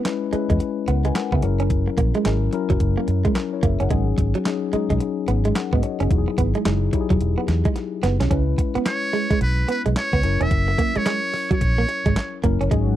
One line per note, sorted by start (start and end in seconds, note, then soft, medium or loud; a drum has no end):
0.00 0.05 G#3 medium
0.00 0.05 C#4 medium
0.00 0.06 E4 medium
0.00 0.06 B4 medium
0.05 0.31 G#3 medium
0.05 0.31 C#4 medium
0.05 0.31 E4 medium
0.05 0.31 B4 medium
0.05 muted clean electric guitar stroke soft
0.05 snare loud
0.05 clap medium
0.05 closed hi-hat medium
0.33 1.36 G#3 medium
0.33 0.45 G#3 medium
0.33 1.36 C#4 medium
0.33 1.36 E4 medium
0.33 0.88 B4 loud
0.33 muted fingered electric bass stroke soft
0.33 closed hi-hat medium
0.50 0.58 E2 medium
0.50 0.57 G#3 medium
0.50 kick medium
0.50 closed hi-hat medium
0.60 muted clean electric guitar stroke soft
0.60 closed hi-hat medium
0.88 1.10 C#2 medium
0.88 1.00 B3 medium
0.88 1.05 A#4 soft
0.88 1.04 F#5 medium
0.88 closed hi-hat medium
1.05 1.13 G#3 medium
1.05 1.15 B4 medium
1.05 1.15 G#5 medium
1.05 closed hi-hat medium
1.15 1.32 A#4 medium
1.15 1.32 F#5 medium
1.15 snare loud
1.15 clap medium
1.15 closed hi-hat medium
1.32 1.41 C#3 loud
1.32 1.40 B3 medium
1.32 1.59 G#4 medium
1.32 1.59 E5 medium
1.32 kick medium
1.43 1.87 F#1 medium
1.43 2.20 F#3 medium
1.43 2.20 C#4 medium
1.43 2.20 E4 medium
1.43 2.21 A#4 medium
1.43 muted clean electric guitar stroke soft
1.43 closed hi-hat medium
1.60 1.68 C#4 medium
1.60 closed hi-hat medium
1.70 kick loud
1.70 closed hi-hat medium
1.88 muted clean electric guitar stroke soft
1.98 2.11 A#1 medium
1.98 2.10 A#3 medium
1.98 kick medium
1.98 closed hi-hat medium
2.15 2.23 G#3 medium
2.15 closed hi-hat soft
2.25 2.48 G#1 loud
2.25 2.51 F#3 medium
2.25 2.38 G#3 medium
2.25 2.51 C#4 medium
2.25 2.52 E4 medium
2.25 2.52 A#4 medium
2.25 snare loud
2.25 clap medium
2.25 closed hi-hat medium
2.53 3.56 F#3 medium
2.53 3.35 C#4 medium
2.53 3.36 E4 medium
2.53 3.35 A#4 loud
2.53 muted clean electric guitar stroke soft
2.53 closed hi-hat medium
2.70 2.78 F#1 medium
2.70 2.78 F#3 medium
2.70 kick medium
2.70 closed hi-hat soft
2.80 2.94 F#1 medium
2.80 kick medium
2.80 closed hi-hat medium
2.98 3.05 A#3 medium
3.08 3.22 F#2 loud
3.08 muted clean electric guitar stroke soft
3.08 closed hi-hat medium
3.25 3.33 G#3 medium
3.25 kick medium
3.25 closed hi-hat soft
3.35 3.52 C#4 medium
3.35 3.52 A#4 medium
3.35 muted clean electric guitar stroke soft
3.35 snare medium
3.35 clap medium
3.35 closed hi-hat medium
3.53 3.63 E4 medium
3.53 3.63 C#5 medium
3.63 3.77 F#1 medium
3.63 3.76 A#3 medium
3.63 3.80 G#4 medium
3.63 3.80 E5 medium
3.63 kick medium
3.63 closed hi-hat medium
3.80 3.89 F#1 medium
3.80 3.88 C#4 medium
3.80 4.07 A#4 medium
3.80 4.07 F#5 medium
3.80 closed hi-hat medium
3.90 4.13 G#1 loud
3.90 4.42 F#3 medium
3.90 4.03 G#3 medium
3.90 4.42 C#4 medium
3.90 4.42 D#4 medium
3.90 4.43 G#4 medium
3.90 kick loud
3.90 closed hi-hat medium
4.18 4.32 G#1 medium
4.18 muted clean electric guitar stroke soft
4.18 kick loud
4.18 closed hi-hat medium
4.35 4.43 F#3 medium
4.35 closed hi-hat medium
4.45 4.71 F#3 medium
4.45 4.72 C#4 medium
4.45 4.72 D#4 medium
4.45 4.72 G#4 medium
4.45 muted clean electric guitar stroke soft
4.45 snare loud
4.45 clap medium
4.45 closed hi-hat medium
4.73 5.76 F#3 medium
4.73 4.86 G#3 medium
4.73 5.56 C#4 medium
4.73 5.56 D#4 medium
4.73 5.56 G#4 loud
4.73 muted fingered electric bass stroke soft
4.73 closed hi-hat medium
4.90 4.99 B1 medium
4.90 4.98 G#3 medium
4.90 kick medium
4.90 closed hi-hat soft
5.00 muted clean electric guitar stroke soft
5.00 closed hi-hat medium
5.28 5.50 G#1 medium
5.28 5.41 B3 medium
5.28 closed hi-hat medium
5.45 5.53 G#3 medium
5.45 closed hi-hat medium
5.55 5.72 A#4 soft
5.55 5.72 F#5 medium
5.55 snare loud
5.55 clap medium
5.55 closed hi-hat medium
5.73 5.81 G#2 loud
5.73 5.80 B3 medium
5.73 5.83 F#4 medium
5.73 5.83 D#5 medium
5.73 kick loud
5.83 6.00 C#5 medium
5.83 muted clean electric guitar stroke soft
5.83 closed hi-hat medium
6.00 6.09 F#1 medium
6.00 6.27 B3 medium
6.00 6.08 C#4 medium
6.00 6.17 G#4 medium
6.00 closed hi-hat medium
6.10 6.24 E1 loud
6.10 6.62 F#3 medium
6.10 6.62 D#4 medium
6.10 6.62 E4 medium
6.10 6.19 F#4 medium
6.10 kick loud
6.10 closed hi-hat medium
6.18 6.66 G#4 medium
6.28 muted clean electric guitar stroke soft
6.38 6.52 G#1 medium
6.38 6.51 B3 medium
6.38 kick loud
6.38 closed hi-hat medium
6.55 6.63 G#3 medium
6.55 closed hi-hat medium
6.65 6.88 F#1 medium
6.65 6.91 F#3 medium
6.65 6.78 G#3 medium
6.65 6.92 D#4 medium
6.65 6.92 E4 medium
6.65 6.92 G#4 medium
6.65 snare loud
6.65 clap medium
6.65 closed hi-hat medium
6.93 7.96 F#3 medium
6.93 7.96 D#4 medium
6.93 7.97 E4 medium
6.93 7.02 G4 medium
6.93 muted clean electric guitar stroke soft
6.93 kick medium
6.93 closed hi-hat medium
7.01 8.00 G#4 loud
7.10 7.19 E1 medium
7.10 7.18 F#3 medium
7.10 kick medium
7.10 closed hi-hat soft
7.21 7.34 E1 medium
7.21 closed hi-hat medium
7.38 7.45 B3 medium
7.48 7.62 E2 loud
7.48 muted clean electric guitar stroke soft
7.48 snare medium
7.48 closed hi-hat medium
7.65 7.73 G#3 medium
7.65 kick medium
7.65 closed hi-hat medium
7.76 muted clean electric guitar stroke soft
7.76 snare soft
7.76 closed hi-hat medium
8.03 8.17 F#1 medium
8.03 8.16 B3 medium
8.03 snare medium
8.03 closed hi-hat medium
8.20 8.29 B1 medium
8.20 8.28 C#4 medium
8.20 snare medium
8.20 closed hi-hat medium
8.31 8.53 C#2 loud
8.31 9.34 G#3 medium
8.31 8.43 C#4 medium
8.31 9.34 C#4 medium
8.31 9.34 E4 medium
8.31 9.34 B4 loud
8.31 kick loud
8.31 closed hi-hat medium
8.58 muted clean electric guitar stroke soft
8.58 kick loud
8.58 closed hi-hat medium
8.75 8.83 B3 medium
8.75 muted fingered electric bass stroke medium
8.75 closed hi-hat soft
8.86 9.38 C#5 loud
8.86 muted clean electric guitar stroke soft
8.86 snare loud
8.86 clap medium
8.86 closed hi-hat medium
9.13 9.26 G#3 medium
9.13 open hi-hat medium
9.30 9.38 G#3 medium
9.30 kick medium
9.30 closed hi-hat soft
9.41 9.63 B1 loud
9.41 9.67 B4 medium
9.41 muted clean electric guitar stroke soft
9.41 closed hi-hat medium
9.68 9.81 B3 medium
9.68 9.82 B4 medium
9.68 closed hi-hat medium
9.86 9.94 B1 medium
9.86 9.93 G#3 medium
9.86 closed hi-hat medium
9.96 10.44 C#5 loud
9.96 snare medium
9.96 clap medium
9.96 closed hi-hat medium
10.13 10.22 C#2 medium
10.13 10.21 B3 medium
10.13 kick loud
10.23 10.37 F#1 medium
10.23 11.27 F#3 medium
10.23 11.27 C#4 medium
10.23 11.27 E4 medium
10.23 11.27 A#4 medium
10.23 muted clean electric guitar stroke soft
10.23 closed hi-hat medium
10.41 10.49 E1 medium
10.41 10.48 C#4 medium
10.41 10.99 E5 loud
10.41 closed hi-hat medium
10.51 10.73 F#1 medium
10.51 kick loud
10.51 closed hi-hat medium
10.68 muted clean electric guitar stroke soft
10.78 10.91 A#3 medium
10.78 kick medium
10.78 closed hi-hat medium
10.96 11.03 G#3 medium
10.96 11.51 C#5 loud
10.96 muted fingered electric bass stroke soft
10.96 closed hi-hat medium
11.06 11.19 G#3 medium
11.06 snare loud
11.06 clap medium
11.06 closed hi-hat medium
11.34 muted clean electric guitar stroke soft
11.34 open hi-hat medium
11.51 11.58 F#3 medium
11.51 12.41 C#5 medium
11.51 kick medium
11.51 closed hi-hat soft
11.61 11.83 A#1 loud
11.61 kick medium
11.61 closed hi-hat medium
11.78 11.86 A#3 medium
11.89 muted clean electric guitar stroke soft
11.89 closed hi-hat medium
12.06 12.14 G#1 medium
12.06 12.14 G#3 medium
12.06 kick loud
12.06 closed hi-hat soft
12.16 muted clean electric guitar stroke soft
12.16 snare loud
12.16 clap medium
12.16 closed hi-hat medium
12.44 12.58 F#1 medium
12.44 12.70 F#3 medium
12.44 12.56 A#3 medium
12.44 12.70 C#4 medium
12.44 12.70 E4 medium
12.44 12.70 A#4 medium
12.44 kick medium
12.44 closed hi-hat medium
12.61 12.69 F#1 medium
12.61 12.68 C#4 medium
12.61 closed hi-hat medium
12.71 12.93 G#1 medium
12.71 12.96 D#3 medium
12.71 12.96 F#3 medium
12.71 12.84 G#3 medium
12.71 12.96 G#3 medium
12.71 12.96 C#4 medium
12.71 12.96 D#4 medium
12.71 12.96 F#4 medium
12.71 12.96 G#4 loud
12.71 kick loud
12.71 closed hi-hat medium